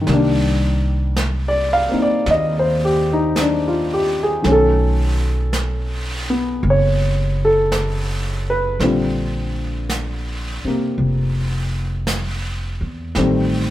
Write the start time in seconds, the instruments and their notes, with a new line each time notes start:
0.01 grand piano D#3
0.06 upright bass C2, grand piano G3 A#3, brush sweep, snare
0.14 grand piano D4
1.16 brush sweep, snare, hi-hat pedal
1.48 grand piano D5
1.73 grand piano F5
1.89 grand piano A#3 C4 D#4, muted upright bass stroke
2.02 grand piano D5
2.26 upright bass D#2, brush sweep, snare
2.31 grand piano D#5
2.59 grand piano C5
2.85 grand piano G4
3.13 grand piano D#4
3.36 brush sweep, snare, hi-hat pedal
3.41 grand piano D4
3.68 grand piano F4
3.93 grand piano G4
4.23 grand piano G#4
4.42 upright bass B1, grand piano D#3 F#3 A3, brush sweep, snare
4.47 grand piano C#4
4.52 grand piano A4
5.53 brush sweep, snare, hi-hat pedal
6.30 grand piano B3
6.63 upright bass F#1, brush sweep
6.70 grand piano C#5
7.45 grand piano A4
7.72 brush sweep, snare, hi-hat pedal
8.50 grand piano B4
8.80 upright bass A#1, grand piano D3 G3 C4 F4, brush sweep, snare
9.90 brush sweep, snare, hi-hat pedal
10.64 grand piano C3 A#3, muted upright bass stroke
10.98 upright bass F1, brush sweep
12.07 brush sweep, snare, hi-hat pedal
12.81 upright bass E2
13.15 upright bass A1, grand piano D#3 G3 A3 C4, brush sweep, snare